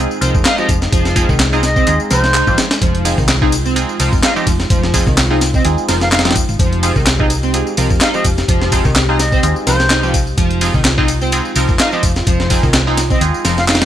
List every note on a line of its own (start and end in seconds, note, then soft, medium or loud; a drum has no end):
0.00 13.85 G#3 medium
0.00 0.19 C4 loud
0.00 0.19 D#4 medium
0.00 13.85 D#4 medium
0.00 0.19 F4 medium
0.00 0.19 G#4 loud
0.00 2.80 G#4 medium
0.11 tambourine soft
0.21 0.31 C2 medium
0.21 0.30 F3 loud
0.21 0.42 C4 medium
0.21 0.42 D#4 medium
0.21 0.42 F4 medium
0.21 0.42 A#4 medium
0.21 closed hi-hat medium
0.21 tambourine medium
0.35 0.42 F1 medium
0.35 kick medium
0.35 tambourine soft
0.45 0.57 D#4 medium
0.45 0.56 F5 medium
0.45 snare loud
0.45 clap loud
0.45 closed hi-hat medium
0.45 tambourine soft
0.58 0.68 F3 loud
0.58 0.70 C4 medium
0.58 0.70 D#4 medium
0.58 0.70 F4 medium
0.58 0.70 G4 loud
0.58 0.68 D#5 medium
0.58 tambourine soft
0.69 0.87 F1 medium
0.69 kick loud
0.69 closed hi-hat medium
0.69 tambourine medium
0.82 snare soft
0.82 tambourine soft
0.92 1.24 F1 loud
0.92 1.15 F3 medium
0.92 kick loud
0.92 closed hi-hat medium
0.92 tambourine soft
1.05 snare soft
1.05 tambourine soft
1.16 1.25 F3 loud
1.16 1.30 C4 loud
1.16 1.30 D#4 medium
1.16 1.30 F4 medium
1.16 1.30 G#4 loud
1.16 kick loud
1.16 closed hi-hat medium
1.16 tambourine medium
1.29 1.83 C2 loud
1.29 1.34 D#3 medium
1.29 kick loud
1.29 tambourine soft
1.40 snare loud
1.40 clap loud
1.40 closed hi-hat medium
1.40 tambourine soft
1.53 1.64 C4 loud
1.53 1.60 D#4 medium
1.53 1.64 D#4 medium
1.53 1.64 F4 loud
1.53 1.64 G#4 loud
1.53 tambourine soft
1.63 2.00 D#5 loud
1.63 snare medium
1.63 closed hi-hat medium
1.63 tambourine medium
1.76 1.84 C4 medium
1.76 kick loud
1.76 tambourine soft
1.87 1.97 D#2 loud
1.87 2.09 C4 loud
1.87 2.09 D#4 medium
1.87 2.09 F4 medium
1.87 2.09 G#4 loud
1.87 closed hi-hat medium
1.87 tambourine soft
2.00 tambourine soft
2.10 2.42 C2 medium
2.10 2.19 F3 loud
2.10 2.31 C4 medium
2.10 2.31 D#4 medium
2.10 2.31 F4 medium
2.10 2.31 A#4 loud
2.10 2.58 C5 loud
2.10 snare medium
2.10 closed hi-hat medium
2.10 tambourine medium
2.23 snare medium
2.23 tambourine soft
2.34 2.46 D#4 medium
2.34 clap loud
2.34 closed hi-hat medium
2.34 tambourine soft
2.47 2.55 G#1 medium
2.47 2.57 F3 loud
2.47 2.59 C4 medium
2.47 2.59 D#4 medium
2.47 2.59 F4 medium
2.47 2.59 G4 loud
2.47 kick medium
2.47 tambourine soft
2.58 snare loud
2.58 closed hi-hat medium
2.58 tambourine medium
2.71 snare loud
2.71 closed hi-hat medium
2.71 tambourine soft
2.82 3.13 F1 loud
2.82 3.04 F3 medium
2.82 6.58 F4 medium
2.82 kick loud
2.82 closed hi-hat medium
2.82 tambourine soft
2.95 closed hi-hat soft
3.05 3.14 F3 loud
3.05 3.19 C4 loud
3.05 3.19 D#4 medium
3.05 3.19 F4 medium
3.05 3.19 G#4 loud
3.05 closed hi-hat medium
3.05 ride medium
3.05 tambourine medium
3.18 3.83 C2 loud
3.18 3.23 D#3 medium
3.18 kick loud
3.18 tambourine soft
3.28 snare loud
3.28 clap loud
3.28 closed hi-hat medium
3.28 tambourine soft
3.42 3.53 C4 loud
3.42 3.53 D#4 medium
3.42 3.49 D#4 medium
3.42 3.53 F4 medium
3.42 3.53 G#4 loud
3.42 kick loud
3.52 closed hi-hat medium
3.52 ride medium
3.52 tambourine medium
3.65 3.73 C4 medium
3.65 tambourine soft
3.76 3.97 C4 loud
3.76 3.98 D#4 medium
3.76 3.98 F4 medium
3.76 3.98 G#4 loud
3.76 closed hi-hat medium
3.76 tambourine soft
3.89 tambourine soft
4.00 4.09 C2 medium
4.00 4.09 F3 loud
4.00 4.20 C4 medium
4.00 4.20 D#4 medium
4.00 4.20 F4 medium
4.00 4.20 A#4 loud
4.00 closed hi-hat medium
4.00 ride medium
4.00 tambourine medium
4.12 4.20 F1 medium
4.12 kick loud
4.12 tambourine soft
4.23 4.35 D#4 medium
4.23 4.34 F5 medium
4.23 snare loud
4.23 clap loud
4.23 closed hi-hat medium
4.23 tambourine soft
4.36 4.46 F3 loud
4.36 4.48 C4 medium
4.36 4.48 D#4 medium
4.36 4.48 F4 medium
4.36 4.48 G4 loud
4.36 4.46 D#5 medium
4.36 tambourine soft
4.47 4.65 F1 medium
4.47 kick loud
4.47 closed hi-hat medium
4.47 ride medium
4.47 tambourine medium
4.60 snare medium
4.60 tambourine soft
4.70 5.02 F1 loud
4.70 4.93 F3 medium
4.70 kick loud
4.70 closed hi-hat medium
4.70 tambourine soft
4.84 snare soft
4.94 5.03 F3 loud
4.94 5.08 C4 loud
4.94 5.08 D#4 medium
4.94 5.08 F4 medium
4.94 5.08 G#4 loud
4.94 kick loud
4.94 closed hi-hat medium
4.94 ride medium
4.94 tambourine medium
5.07 5.61 C2 loud
5.07 5.12 D#3 medium
5.07 kick loud
5.07 tambourine soft
5.17 snare loud
5.17 clap loud
5.17 closed hi-hat medium
5.17 tambourine soft
5.30 5.42 C4 loud
5.30 5.42 D#4 medium
5.30 5.38 D#4 medium
5.30 5.42 F4 medium
5.30 5.42 G#4 loud
5.41 snare medium
5.41 closed hi-hat medium
5.41 ride medium
5.41 tambourine medium
5.54 5.62 C4 medium
5.54 5.64 D#5 medium
5.54 kick loud
5.54 tambourine soft
5.65 5.75 D#2 loud
5.65 5.86 C4 loud
5.65 5.86 D#4 medium
5.65 5.86 F4 medium
5.65 5.86 G#4 loud
5.65 closed hi-hat medium
5.65 tambourine soft
5.78 tambourine soft
5.88 6.44 F1 medium
5.88 5.97 F3 loud
5.88 6.09 C4 medium
5.88 6.09 D#4 medium
5.88 6.09 F4 medium
5.88 6.09 A#4 loud
5.88 snare medium
5.88 closed hi-hat medium
5.88 ride medium
5.88 tambourine medium
6.01 6.08 F5 medium
6.01 snare medium
6.01 tambourine soft
6.12 6.24 D#4 medium
6.12 6.20 F5 medium
6.12 snare loud
6.12 clap loud
6.12 closed hi-hat medium
6.12 tambourine soft
6.19 snare medium
6.19 closed hi-hat medium
6.25 6.35 F3 loud
6.25 6.37 C4 medium
6.25 6.37 D#4 medium
6.25 6.37 F4 medium
6.25 6.37 G4 loud
6.25 snare medium
6.25 closed hi-hat medium
6.25 tambourine soft
6.31 snare medium
6.31 closed hi-hat medium
6.36 kick medium
6.36 closed hi-hat medium
6.36 ride medium
6.36 tambourine medium
6.49 6.57 G#1 loud
6.49 tambourine soft
6.59 6.91 F1 loud
6.59 6.82 F3 medium
6.59 10.36 G4 medium
6.59 kick loud
6.59 closed hi-hat medium
6.59 tambourine soft
6.73 closed hi-hat soft
6.83 6.92 F3 loud
6.83 6.97 C4 loud
6.83 6.97 D#4 medium
6.83 6.97 F4 medium
6.83 6.97 G#4 loud
6.83 closed hi-hat medium
6.83 ride medium
6.83 tambourine medium
6.96 7.61 C2 loud
6.96 7.00 D#3 medium
6.96 kick loud
6.96 tambourine soft
7.06 snare loud
7.06 clap loud
7.06 closed hi-hat medium
7.06 tambourine soft
7.19 7.31 C4 loud
7.19 7.27 D#4 medium
7.19 7.31 D#4 loud
7.19 7.31 F4 medium
7.19 7.31 G#4 loud
7.19 kick loud
7.30 closed hi-hat medium
7.30 ride medium
7.30 tambourine medium
7.43 7.50 C4 medium
7.43 tambourine soft
7.54 7.75 C4 loud
7.54 7.75 D#4 medium
7.54 7.75 F4 medium
7.54 7.76 G#4 loud
7.54 closed hi-hat medium
7.54 tambourine soft
7.67 tambourine soft
7.77 7.87 C2 medium
7.77 7.86 F3 loud
7.77 7.98 C4 medium
7.77 7.98 D#4 medium
7.77 7.98 F4 medium
7.77 7.98 A#4 medium
7.77 closed hi-hat medium
7.77 ride medium
7.77 tambourine medium
7.90 7.98 F1 medium
7.90 kick loud
7.90 tambourine soft
8.01 8.13 D#4 medium
8.01 8.12 F5 medium
8.01 snare loud
8.01 clap loud
8.01 closed hi-hat medium
8.01 tambourine soft
8.13 8.24 F3 loud
8.13 8.26 C4 medium
8.13 8.26 D#4 medium
8.13 8.26 F4 medium
8.13 8.26 G4 loud
8.13 8.24 D#5 medium
8.13 tambourine soft
8.24 8.43 F1 medium
8.24 kick loud
8.24 closed hi-hat medium
8.24 ride medium
8.24 tambourine medium
8.38 snare soft
8.38 tambourine soft
8.48 8.80 F1 loud
8.48 8.71 F3 medium
8.48 kick loud
8.48 closed hi-hat medium
8.48 tambourine soft
8.62 snare soft
8.72 8.81 F3 loud
8.72 8.86 C4 loud
8.72 8.86 D#4 medium
8.72 8.86 F4 medium
8.72 8.86 G#4 loud
8.72 kick loud
8.72 closed hi-hat medium
8.72 ride medium
8.72 tambourine medium
8.85 9.39 C2 loud
8.85 8.89 D#3 medium
8.85 kick loud
8.85 tambourine soft
8.96 snare loud
8.96 clap loud
8.96 closed hi-hat medium
8.96 tambourine soft
9.09 9.21 C4 loud
9.09 9.16 D#4 medium
9.09 9.20 D#4 medium
9.09 9.20 F4 loud
9.09 9.20 G#4 loud
9.19 9.56 D#5 loud
9.19 snare medium
9.19 closed hi-hat medium
9.19 ride medium
9.19 tambourine medium
9.32 9.40 C4 medium
9.32 kick loud
9.32 tambourine soft
9.43 9.53 D#2 loud
9.43 9.65 C4 loud
9.43 9.65 D#4 medium
9.43 9.65 F4 medium
9.43 9.65 G#4 loud
9.43 closed hi-hat medium
9.43 tambourine soft
9.56 tambourine soft
9.66 10.33 C2 medium
9.66 9.75 F3 loud
9.66 9.87 C4 medium
9.66 9.87 D#4 medium
9.66 9.88 F4 medium
9.66 9.87 A#4 medium
9.66 10.14 C5 loud
9.66 snare medium
9.66 closed hi-hat medium
9.66 ride medium
9.66 tambourine medium
9.80 snare medium
9.80 tambourine soft
9.90 10.02 D#4 medium
9.90 snare loud
9.90 clap loud
9.90 closed hi-hat loud
9.90 tambourine soft
10.03 10.13 F3 loud
10.03 10.15 C4 medium
10.03 10.15 D#4 medium
10.03 10.15 F4 medium
10.03 10.15 G4 loud
10.03 tambourine soft
10.14 kick loud
10.14 closed hi-hat medium
10.14 ride medium
10.14 tambourine medium
10.27 tambourine soft
10.37 10.69 F1 loud
10.37 10.60 F3 medium
10.37 13.85 F4 loud
10.37 kick loud
10.37 closed hi-hat medium
10.37 tambourine soft
10.51 closed hi-hat soft
10.61 10.70 F3 loud
10.61 10.75 C4 loud
10.61 10.75 D#4 medium
10.61 10.75 F4 medium
10.61 10.75 G#4 loud
10.61 closed hi-hat medium
10.61 ride medium
10.61 tambourine medium
10.74 11.40 C2 loud
10.74 10.79 D#3 medium
10.74 kick loud
10.74 tambourine soft
10.85 snare loud
10.85 clap loud
10.85 closed hi-hat medium
10.85 tambourine soft
10.98 11.09 C4 loud
10.98 11.09 D#4 loud
10.98 11.05 D#4 medium
10.98 11.09 F4 loud
10.98 11.09 G#4 loud
10.98 kick loud
11.08 closed hi-hat medium
11.08 ride medium
11.08 tambourine medium
11.21 11.29 C4 medium
11.21 tambourine soft
11.32 11.54 C4 loud
11.32 11.54 D#4 medium
11.32 11.54 F4 medium
11.32 11.54 G#4 loud
11.32 closed hi-hat medium
11.32 tambourine soft
11.45 tambourine soft
11.56 11.65 C2 medium
11.56 11.65 F3 loud
11.56 11.77 C4 medium
11.56 11.76 D#4 medium
11.56 11.76 F4 medium
11.56 11.76 A#4 medium
11.56 closed hi-hat medium
11.56 ride medium
11.56 tambourine medium
11.69 11.77 F1 medium
11.69 kick loud
11.69 tambourine soft
11.79 11.91 D#4 medium
11.79 11.90 F5 medium
11.79 snare loud
11.79 clap loud
11.79 closed hi-hat loud
11.79 tambourine soft
11.92 12.02 F3 loud
11.92 12.04 C4 medium
11.92 12.04 D#4 medium
11.92 12.04 F4 medium
11.92 12.04 G4 loud
11.92 12.02 D#5 medium
11.92 tambourine soft
12.03 12.21 F1 medium
12.03 kick loud
12.03 closed hi-hat medium
12.03 ride medium
12.03 tambourine medium
12.16 snare soft
12.16 tambourine soft
12.27 12.58 F1 loud
12.27 12.49 F3 medium
12.27 kick loud
12.27 closed hi-hat medium
12.27 tambourine soft
12.40 snare medium
12.50 12.59 F3 loud
12.50 12.64 C4 loud
12.50 12.64 D#4 medium
12.50 12.64 F4 medium
12.50 12.64 G#4 loud
12.50 kick loud
12.50 closed hi-hat medium
12.50 ride medium
12.50 tambourine medium
12.63 13.17 C2 loud
12.63 12.67 D#3 medium
12.63 kick loud
12.63 tambourine soft
12.74 snare loud
12.74 clap loud
12.74 closed hi-hat medium
12.74 tambourine soft
12.87 12.99 C4 loud
12.87 12.94 D#4 medium
12.87 12.99 D#4 loud
12.87 12.99 F4 medium
12.87 12.99 G#4 loud
12.97 snare medium
12.97 closed hi-hat medium
12.97 ride medium
12.97 tambourine medium
13.10 13.18 C4 medium
13.10 13.20 D#5 medium
13.10 kick loud
13.10 tambourine soft
13.21 13.31 D#2 loud
13.21 13.43 C4 loud
13.21 13.43 D#4 medium
13.21 13.43 F4 medium
13.21 13.43 G#4 loud
13.21 closed hi-hat medium
13.21 tambourine soft
13.34 tambourine soft
13.45 13.85 F1 medium
13.45 13.53 F3 loud
13.45 13.65 C4 medium
13.45 13.65 D#4 medium
13.45 13.65 F4 medium
13.45 13.65 A#4 loud
13.45 snare medium
13.45 closed hi-hat medium
13.45 ride medium
13.45 tambourine medium
13.58 13.64 F5 medium
13.58 snare medium
13.58 tambourine soft
13.68 13.80 D#4 medium
13.68 13.76 F5 medium
13.68 snare medium
13.68 clap loud
13.68 closed hi-hat medium
13.68 tambourine soft
13.75 snare medium
13.75 closed hi-hat medium
13.81 13.85 F3 loud
13.81 13.85 C4 medium
13.81 13.85 D#4 medium
13.81 13.85 F4 medium
13.81 13.85 G4 loud
13.81 snare medium
13.81 closed hi-hat medium
13.81 tambourine soft